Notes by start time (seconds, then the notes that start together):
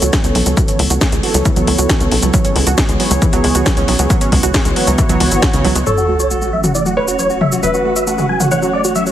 0.02 C#2 F#4, closed hi-hat, shaker
0.13 F#3, kick, snare, closed hi-hat, shaker
0.24 C#2 C#4, closed hi-hat, shaker
0.35 B1 F#3, open hi-hat
0.46 C#2 F#3, closed hi-hat, shaker
0.57 F#3, kick, closed hi-hat, shaker
0.68 C#4, closed hi-hat, shaker
0.79 C#2 A3, open hi-hat
0.90 C#2 F#4, closed hi-hat, shaker
1.01 A3, kick, snare, closed hi-hat, shaker
1.12 C#2 G#3, closed hi-hat, shaker
1.23 F#3, open hi-hat
1.34 C#2 F#3, closed hi-hat, shaker
1.45 E3, kick, closed hi-hat, shaker
1.56 C#2 F#3, closed hi-hat, shaker
1.67 C#2 A3, open hi-hat
1.78 C#2 F#4, closed hi-hat, shaker
1.89 F#3, kick, snare, closed hi-hat, shaker
2.00 C#2 C#4, closed hi-hat, shaker
2.11 B1 F#3, open hi-hat
2.23 C#2 F#3, closed hi-hat, shaker
2.34 F#3, kick, closed hi-hat, shaker
2.45 C#4, closed hi-hat, shaker
2.56 C#2 G#3, open hi-hat
2.67 C#2 F#4, closed hi-hat, shaker
2.78 G#3, kick, snare, closed hi-hat, shaker
2.89 C#2 G#3, closed hi-hat, shaker
3.00 F#3, open hi-hat
3.11 C#2 F#3, closed hi-hat, shaker
3.22 E3, kick, closed hi-hat, shaker
3.33 C#2 F#3, closed hi-hat, shaker
3.44 C#2 G#3, open hi-hat
3.55 C#2 F#4, closed hi-hat, shaker
3.66 F#3, kick, snare, closed hi-hat, shaker
3.77 C#2 C#4, closed hi-hat, shaker
3.88 B1 F#3, open hi-hat
3.99 C#2 F#3, closed hi-hat, shaker
4.10 F#3, kick, closed hi-hat, shaker
4.21 C#4, closed hi-hat, shaker
4.32 C#2 G#3, kick, open hi-hat
4.43 C#2 F#4, closed hi-hat, shaker
4.54 G#3, kick, snare, closed hi-hat, shaker
4.65 C#2 G#3, closed hi-hat, shaker
4.76 F#3, open hi-hat
4.87 C#2 F#3, closed hi-hat, shaker
4.98 E3, kick, closed hi-hat, shaker
5.09 C#2 F#3, closed hi-hat, shaker
5.20 C#2 E3, open hi-hat
5.31 G#1 F#3, closed hi-hat, shaker
5.42 F#4, kick, snare, closed hi-hat, shaker
5.53 C#2 C#3, closed hi-hat, shaker
5.64 C#2 F#3, open hi-hat
5.75 C#2 G#3, closed hi-hat, shaker
5.87 F#1 F#3 A4 C#5, sub drop, shaker
5.98 C#4 F#4, shaker
6.09 A3 F#4
6.20 F#4 C#5, shaker
6.31 A3 F#4, shaker
6.42 G#3 F#4, shaker
6.53 F#3 E5
6.64 F#3 F#4, mid tom, shaker
6.75 E3 D5, shaker
6.86 F#3 F#4, shaker
6.97 A3 B4 C#5
7.08 F#4, shaker
7.19 F#3 C#5, shaker
7.30 C#4 F#4, shaker
7.41 F#3 E5, mid tom
7.52 F#3 F#4, shaker
7.63 F#1 F#3 B4 E5, shaker
7.74 C#4 F#4, shaker
7.85 A3 F#4
7.96 F#4 E5, shaker
8.07 A3 F#4, shaker
8.18 G#3 F#4, mid tom, shaker
8.29 F#3 G#5
8.40 F#3 F#4, mid tom, shaker
8.51 E3 C#5 F#5, shaker
8.62 F#3 F#4, shaker
8.73 A3 D5
8.84 F#4, shaker
8.95 F#3 E5, shaker
9.06 C#4 F#4, shaker